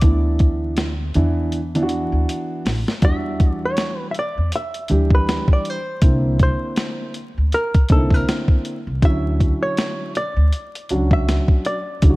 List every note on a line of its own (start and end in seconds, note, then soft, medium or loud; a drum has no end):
0.00 1.11 D2 loud
0.00 0.87 E3 medium
0.00 0.87 B3 medium
0.00 0.87 D4 medium
0.00 2.29 D5 medium
0.00 kick loud
0.00 closed hi-hat medium
0.04 0.88 E4 medium
0.39 kick medium
0.39 closed hi-hat medium
0.77 snare loud
0.77 closed hi-hat medium
1.14 2.08 E2 medium
1.14 1.57 E3 medium
1.14 1.58 B3 medium
1.14 1.58 D4 medium
1.14 1.58 E4 medium
1.14 closed hi-hat medium
1.52 closed hi-hat medium
1.75 2.69 E3 medium
1.75 2.69 B3 medium
1.75 2.69 D4 medium
1.75 1.81 E4 medium
1.75 closed hi-hat medium
1.83 2.73 F#4 medium
1.89 closed hi-hat medium
2.12 2.25 D2 medium
2.29 closed hi-hat medium
2.65 2.82 A1 medium
2.65 snare medium
2.65 open hi-hat soft
2.88 snare medium
3.02 3.49 E2 loud
3.02 4.14 E3 medium
3.02 4.14 G3 medium
3.02 4.14 D4 medium
3.02 4.14 F#4 medium
3.02 3.52 E5 loud
3.02 kick loud
3.02 closed hi-hat medium
3.40 kick medium
3.40 closed hi-hat medium
3.52 3.65 D5 loud
3.65 4.08 C#5 medium
3.77 snare loud
3.77 closed hi-hat medium
4.11 4.16 E5 medium
4.11 closed hi-hat medium
4.19 4.52 D5 medium
4.38 4.50 E2 medium
4.52 5.09 E5 loud
4.52 closed hi-hat medium
4.74 closed hi-hat medium
4.88 5.37 D2 medium
4.88 5.74 E3 medium
4.88 5.74 G3 medium
4.88 5.75 D4 medium
4.88 5.75 G4 medium
4.88 closed hi-hat medium
5.11 kick medium
5.15 5.52 B4 medium
5.29 snare loud
5.29 closed hi-hat medium
5.48 kick medium
5.53 5.70 D5 medium
5.65 closed hi-hat medium
5.70 6.42 C5 medium
6.02 6.49 C2 loud
6.02 7.13 D3 medium
6.02 7.13 A#3 medium
6.02 7.13 C4 medium
6.02 7.14 E4 medium
6.02 kick loud
6.02 closed hi-hat loud
6.39 7.13 C5 medium
6.39 kick loud
6.39 closed hi-hat medium
6.76 snare loud
6.76 closed hi-hat medium
7.14 closed hi-hat medium
7.38 7.50 D2 medium
7.52 7.92 A#4 loud
7.52 closed hi-hat medium
7.74 muted upright bass stroke soft
7.74 kick loud
7.74 closed hi-hat medium
7.89 8.20 C2 medium
7.89 8.74 D3 medium
7.89 8.74 A#3 medium
7.89 8.74 C4 medium
7.89 7.98 D#4 medium
7.89 8.14 A4 medium
7.89 kick loud
7.89 closed hi-hat medium
7.97 8.78 E4 medium
8.10 8.66 A#4 medium
8.10 kick medium
8.10 snare soft
8.29 snare loud
8.29 closed hi-hat medium
8.48 kick medium
8.65 closed hi-hat medium
8.87 8.99 C2 medium
9.02 9.49 D2 loud
9.02 10.14 D3 medium
9.02 10.14 F#3 medium
9.02 10.14 C#4 medium
9.02 10.14 E4 medium
9.02 9.62 E5 loud
9.02 kick loud
9.02 closed hi-hat medium
9.40 kick medium
9.40 closed hi-hat medium
9.62 10.17 C#5 medium
9.77 snare loud
9.77 closed hi-hat medium
10.15 11.13 D5 loud
10.15 closed hi-hat medium
10.37 10.49 D2 medium
10.53 closed hi-hat medium
10.75 closed hi-hat medium
10.89 11.37 C#2 medium
10.89 11.75 F#3 medium
10.89 11.75 C#4 medium
10.89 11.74 D4 medium
10.89 11.75 F#4 medium
10.89 closed hi-hat medium
11.11 11.66 E5 loud
11.11 kick medium
11.28 snare loud
11.28 closed hi-hat medium
11.48 kick medium
11.65 12.16 D5 medium
11.65 closed hi-hat medium
12.02 12.16 D2 loud
12.02 12.16 C#3 medium
12.02 12.16 D3 medium
12.02 12.16 F#3 medium
12.02 12.11 E4 medium
12.02 kick loud
12.02 closed hi-hat medium
12.10 12.16 F#4 medium